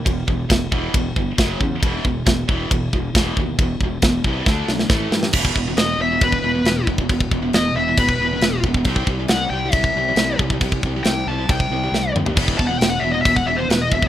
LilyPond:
<<
  \new Staff \with { instrumentName = "Lead electric guitar" } { \time 4/4 \key e \minor \tempo 4 = 136 r1 | r1 | r1 | r4 dis''8 e''8 b'4. r8 |
r4 dis''8 e''8 b'4. r8 | r4 fis''8 g''8 e''4. r8 | r4 g''8 a''8 g''4. r8 | r8 a''16 fis''16 g''16 fis''16 e''16 dis''16 e''16 fis''16 e''16 c''16 b'16 dis''16 e''16 r16 | }
  \new Staff \with { instrumentName = "Distorted electric guitar" } { \clef bass \time 4/4 \key e \minor <e, b,>8 <e, b,>8 <e, b,>8 <e, b, e>8 <e, b,>8 <e, b,>8 <fis, cis fis>8 <fis, cis>8 | <e, b, e>8 <e, b,>8 <e, b,>8 <e, b, e>8 <e, b,>8 <e, b,>8 <e, b, e>8 <e, b,>8 | <e, b,>8 <e, b,>8 <e, b,>8 <e, b, e>8 <d a d'>8 <d a>8 <a, e a>8 <a, e>8 | <e, b, e>8 <e, b,>16 <e, b,>16 <e, b,>8 <e, b,>16 <e, b,>16 <e, b,>8 <e, b,>16 <e, b,>16 <e, b,>8 <e, b,>16 <e, b,>16 |
<e, b,>8 <e, b,>16 <e, b,>16 <e, b,>8 <e, b,>16 <e, b,>16 <e, b,>8 <e, b,>16 <e, b,>16 <e, b,>8 <e, b,>16 <e, b,>16 | <c g c'>8 <c g>16 <c g>16 <c g>8 <c g>16 <c g>16 <c g>8 <c g>16 <c g>16 <c g>8 <c g>16 <c g>16 | <c g>8 <c g>16 <c g>16 <c g>8 <c g>16 <c g>16 <c g>8 <c g>16 <c g>16 <c g>8 <c g>16 <c g>16 | <e, b, e>8 <e, b,>16 <e, b,>16 <e, b,>8 <e, b,>16 <e, b,>16 <e, b,>8 <e, b,>16 <e, b,>16 <e, b,>8 <e, b,>16 <e, b,>16 | }
  \new Staff \with { instrumentName = "Fingered electric bass" } { \clef bass \time 4/4 \key e \minor e,,8 e,,8 e,,8 e,,8 e,,8 g,,8 fis,,8 e,8 | e,,8 e,,8 e,,8 e,,8 e,,8 e,,8 e,,8 dis,8 | e,,8 e,,8 e,,8 c,8 d,8 b,,8 a,,8 g,8 | e,,8 e,,8 e,,8 e,,8 e,,8 e,,8 e,,8 e,,8 |
e,,8 e,,8 e,,8 e,,8 e,,8 e,,8 e,,8 e,,8 | c,8 c,8 c,8 c,8 c,8 c,8 c,8 c,8 | c,8 c,8 c,8 c,8 c,8 c,8 c,8 dis,8 | e,,8 e,,8 e,,8 e,,8 e,,8 e,,8 e,,8 e,,8 | }
  \new DrumStaff \with { instrumentName = "Drums" } \drummode { \time 4/4 <bd rb>8 bd8 <bd rb sn>8 bd8 <bd rb>8 bd8 <bd rb sn>8 bd8 | <bd rb>8 bd8 <bd rb sn>8 bd8 <bd rb>8 bd8 <bd rb sn>8 bd8 | <bd rb>8 bd8 <bd rb sn>8 bd8 <bd sn>8 sn16 sn16 <bd sn>8 sn16 sn16 | <cymc bd>16 bd16 bd8 <cymc sn>4 <cymc bd>16 bd8. <cymc sn>8 bd16 bd16 |
<cymc bd>16 bd16 bd8 <cymc sn>4 <cymc bd>16 bd8. <cymc sn>8 bd16 bd16 | <cymc bd>16 bd16 bd8 <cymc sn>4 <cymc bd>16 bd8. <cymc sn>8 bd16 bd16 | <cymc bd>16 bd16 bd8 <cymc sn>4 <cymc bd>16 bd8. sn8 toml16 tomfh16 | <cymc bd>16 bd16 bd8 <cymc sn>4 <cymc bd>16 bd8. <cymc sn>8 bd16 bd16 | }
>>